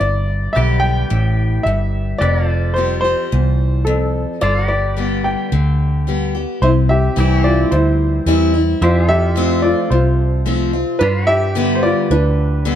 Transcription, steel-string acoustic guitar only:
0.01 G2
0.55 D3 G3 B3 G4
1.10 A2
1.67 G2
2.22 F2
2.76 F3 G3 C4 G4
3.04 C4 G4
3.32 E2
3.87 F2
4.41 G2
4.97 D3 G3 B3 G4
5.52 D3
6.07 D3 G3 B3 G4
6.35 B3 G4
6.63 C3
7.16 E3 G3 C4 E4
7.72 G2
8.26 E3 G3 C4 E4
8.54 C4 E4
8.82 F2
9.36 F3 A3 C4 F4
9.92 C3
10.46 F3 A3 C4 F4
10.73 C4 F4
11.01 G2
11.55 D3 G3 B3 G4
12.11 D3
12.65 D3 G3 B3 G4

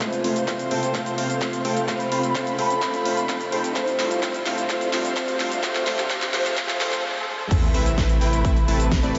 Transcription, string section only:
0.01 C3 A3 F4 C5
1.88 B5
3.76 C3 G3 D4 C5
7.51 C3 A3 E4 B4

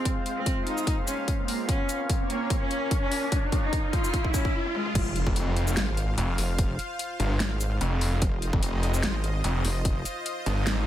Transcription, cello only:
0.37 C4
0.67 D#4
1.07 C#4
1.48 A#3
1.69 C#4
2.30 A#3
2.61 C#4
3.02 C#4
3.63 D#4
3.93 F4
4.34 C#4
4.75 G#3

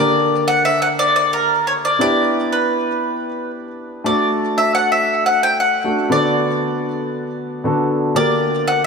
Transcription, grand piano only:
Already playing: D3 A#3 D4 G4 A#4
1.99 B3 D4 E4 G4
4.04 A3 D4 F#4 A4
5.84 A3 D4 F#4 A4
6.09 D3 B3 D4 F#4 A4
7.64 D3 B3 D4 F#4 A4
8.14 D3 A#3 D4 G4 A#4

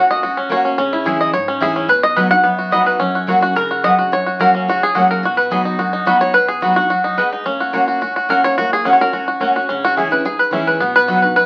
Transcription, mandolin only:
0.50 A#3 F#4 C#5 F#5
1.05 C#4 G#4 E5 G#5
1.60 C#4 G#4 E5 G#5
2.16 B3 F#4 D#5 B5
2.71 B3 F#4 D#5 B5
3.27 A#3 F#4 C#5 F#5
3.83 A#3 F#4 C#5 F#5
4.40 A#3 F#4 C#5 F#5
4.95 A#3 F#4 C#5 F#5
5.51 B3 F#4 D#5 B5
6.06 B3 F#4 D#5 B5
6.62 B3 F#4 D#5 B5
7.17 B3 F#4 D#5 B5
7.73 A#3 F#4 C#5 F#5
8.29 A#3 F#4 C#5 F#5
8.85 A#3 F#4 C#5 F#5
9.41 A#3 F#4 C#5 F#5
9.97 C#4 G#4 E5 G#5
10.52 C#4 G#4 E5 G#5
11.07 B3 F#4 D#5 B5

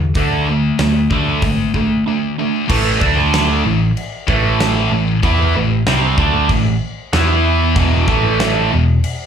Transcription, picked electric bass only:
Already playing: E2
0.16 D2
0.79 D2
1.11 D2
1.43 G#1
2.70 A1
3.02 D2
3.65 A1
4.28 A1
4.92 A1
5.24 E2
5.55 A1
5.88 C2
6.18 D2
6.50 A1
7.13 E2
7.76 E1
8.08 A1
8.73 E1

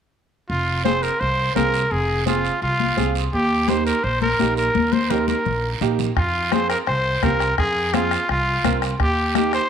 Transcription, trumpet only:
0.49 F4
0.85 C5
1.03 A#4
1.20 C5
1.56 A#4
1.92 G#4
2.27 F4
2.62 F4
3.33 G4
3.69 C5
3.86 A#4
4.04 C5
4.22 A#4
4.57 A#4
4.93 C5
5.11 A#4
5.29 A#4
6.17 F4
6.53 C5
6.70 A#4
6.88 C5
7.24 A#4
7.58 G#4
7.94 F4
8.30 F4
9.00 G4
9.36 G4
9.54 C5

